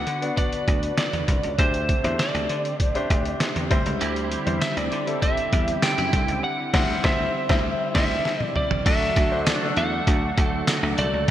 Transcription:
Already playing: D3 B3 D4 F#4 B4 D5 F#5
0.07 D3, closed hi-hat
0.22 B3 D4 F#4 D5, closed hi-hat
0.37 D5, kick, closed hi-hat
0.53 closed hi-hat
0.68 D2, kick, closed hi-hat
0.83 closed hi-hat
0.98 D5, snare, closed hi-hat
1.13 E2, closed hi-hat
1.28 C2, kick, closed hi-hat
1.43 C#2, closed hi-hat
1.58 D2 D3 A3 C4 D4 G4 C5, kick, closed hi-hat
1.74 closed hi-hat
1.89 kick, closed hi-hat
2.03 E2 A3 D4 G4 C5, closed hi-hat
2.19 D5, snare, closed hi-hat
2.34 D2, closed hi-hat
2.49 D3, closed hi-hat
2.65 closed hi-hat
2.80 kick, closed hi-hat
2.94 A3 D4 G4 C5, closed hi-hat
3.10 D2, kick, closed hi-hat
3.25 closed hi-hat
3.40 snare, closed hi-hat
3.56 E2, closed hi-hat
3.70 D2 D3 G3 C4 E4 C5, kick, closed hi-hat
3.86 C#2, closed hi-hat
4.01 D2 G3 E4, closed hi-hat
4.16 closed hi-hat
4.31 G3, closed hi-hat
4.46 E2 G3 C4 E4 C5, closed hi-hat
4.61 C4 E5, snare, closed hi-hat, tambourine
4.77 D2 D5, closed hi-hat
4.92 D3 G3, closed hi-hat
5.06 G3 C4 E4 A4, closed hi-hat
5.22 C4 E5, kick, closed hi-hat
5.37 closed hi-hat
5.52 E2 G3, kick, closed hi-hat
5.68 closed hi-hat
5.82 D4 G5, snare, closed hi-hat, tambourine
5.98 F#2 E4, closed hi-hat
6.13 C2 D3 C4, kick, closed hi-hat
6.28 C#2, closed hi-hat
6.44 F#5
6.73 D2 G3 C4 E4 C5 F#5, kick, snare, crash
7.04 D2 G3 C4 E4 C5 E5, kick, snare
7.49 D2 G3 C4 E4 C5, kick, snare
7.94 D2 G3 C4 E4 C5 E5, kick, snare, crash
8.25 snare
8.40 D5, high tom
8.56 D5, mid tom
8.71 floor tom
8.85 D2 D3 F#3 D4 F#4 A4 E5, kick, closed hi-hat, crash
9.16 D2 A3, kick, closed hi-hat
9.31 D4 F#4 C5
9.46 D4 D5, snare, closed hi-hat, tambourine
9.61 D4 F#4 A4
9.77 E2 A3 F#5, closed hi-hat
10.07 D2 F#3, kick, closed hi-hat
10.38 D2 A3, kick, closed hi-hat
10.67 F#3, snare, closed hi-hat, tambourine
10.83 D2
10.98 C2 A3 D5, closed hi-hat
11.13 C#2

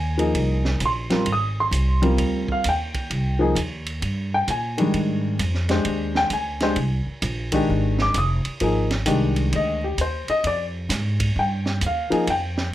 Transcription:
Already playing: D#2 G#5
0.18 F3 A#3 D#4 G#4, ride
0.34 C2, ride
0.65 snare
0.80 A#1, hi-hat pedal, ride
0.86 C6
1.10 G3 C4 F4 A#4, snare, ride
1.25 G#1, ride
1.32 D#6
1.60 C6
1.71 C2, hi-hat pedal, ride
2.02 G3 C4 F4 A#4, ride
2.17 D2, ride
2.48 F5, muted upright bass stroke, kick
2.64 D#2, hi-hat pedal, ride
2.69 G5
2.94 kick, ride
3.10 C2, ride
3.39 F3 A#3 D#4 G#4
3.55 D#2, hi-hat pedal, ride
3.86 ride
4.02 G2, ride
4.34 G5
4.47 A#2 G#5, hi-hat pedal, ride
4.78 D#3 G3 G#3 D4, ride
4.94 G#2, ride
5.39 F2, hi-hat pedal, ride
5.54 snare
5.68 G#3 D4 G4 C5, snare, ride
5.85 D#2, ride
6.15 G5, snare
6.30 D2 G#5, hi-hat pedal, ride
6.60 G#3 D4 G4 C5, snare, ride
6.76 C2, ride
7.07 muted upright bass stroke
7.22 A#1, hi-hat pedal, ride
7.52 D#3 G#3 D4 G4, kick, ride
7.69 G#1
7.99 D6, snare
8.14 F1 D#6, hi-hat pedal, ride
8.45 muted upright bass stroke, ride
8.60 G#1 F3 A#3 D#4 G#4, ride
8.91 snare, ride
9.06 C2 D#3 G#3 D4 G4, hi-hat pedal, ride
9.36 ride
9.53 D2 D#5, ride
9.84 G4
9.98 D#2 C5, hi-hat pedal, ride
10.28 D#5, muted upright bass stroke, ride
10.44 F2 D5, ride
10.89 G#2, snare, hi-hat pedal, ride
11.20 kick, ride
11.36 G2 G5
11.66 snare
11.81 D#2, hi-hat pedal, ride
11.87 F5
12.10 F3 A#3 D#4 G#4, muted upright bass stroke, ride
12.27 F2 G5, ride
12.57 snare

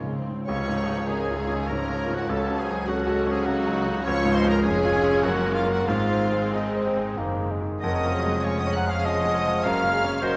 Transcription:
Already playing: C#2 G#2 C#3 G#3 A#3 C#4 F4 C#5
0.03 C#3 G#3
0.12 C#3 C4
0.20 C#3
0.28 G#2 C#3
0.36 C#3
0.46 C#2 F3 C#4 C#5 G5 C#6, tam-tam
0.51 F5
0.69 G#2
0.76 D#4
0.88 G#3
1.06 G#3 C#4 D#4 G#4 A#4 C#5 G#5
1.30 F4
1.37 D#3 G#4
1.48 C#4
1.66 F3 C#4 F4 A#4 D#5 A#5
1.71 G#2 C#5
1.89 G#3
2.08 G#2
2.13 F#4 A#4 F#5
2.27 C#2 F#3 C#4 F#4 A4 C#5 A5
2.50 C#3
2.56 G#4 C5 G#5
2.70 F#3
2.87 G#3 C#4 F#4 A4 F#5
3.07 F#4
3.27 C#4 G#4
3.31 G#4 C5 G#5
3.43 F#3 D#4 F#4 G#4 A4 F#5
3.48 C#3
3.67 F#3
3.75 F#4
3.88 C#3
4.03 C#2 F3 C#4 F4 C#5 F5 C#6
4.08 C#2
4.25 G#2
4.33 C5 D#5 C6
4.44 G#3 A#4
4.49 A#4 C#5 A#5
4.62 F1 F2 G#3 C#4 G#4 C#5 G#5
4.85 F4
5.03 C#4
5.23 F#1 F#2 F#4 A#4 C5 F#5
5.28 A#4
5.46 A#3
5.53 F4 G#4 F5
5.66 C#4 F#4 A#4
5.71 F#4 A#4 F#5
5.86 G#1 G#2 G#3 C4 F4 G#4 C5 F5
6.11 D#3
6.32 G#3
6.52 G#3 D#4 G#4 D#5
6.69 A#4
6.73 G#4 C5
6.86 C4 G4
6.90 G#4
6.97 G#4
7.17 F#1 F#2 D#3 A#3
7.40 G#3
7.51 G#3
7.62 D#3
7.80 F1 F2 G#3 C#4 A#4 D#5 F#5 D#6
8.04 F3
8.12 F#3 G#4
8.26 G#3
8.42 G#3 C#4 C#5 F5 C#6
8.47 G#4
8.59 D#5 F#5 D#6
8.67 C#5
8.73 F#5 A#5 F#6
8.87 G#4 F5 G#5 F6
9.03 F3 C#4 G#4 D#5 F#5 D#6
9.07 D#5
9.26 G#3
9.35 C5
9.47 F3
9.64 F#1 F#2 A#4 F5 A#5 F6
9.84 C#3
9.93 G#4
10.04 C#4
10.21 G#3 F#4 A#4 C5 D#5 C6

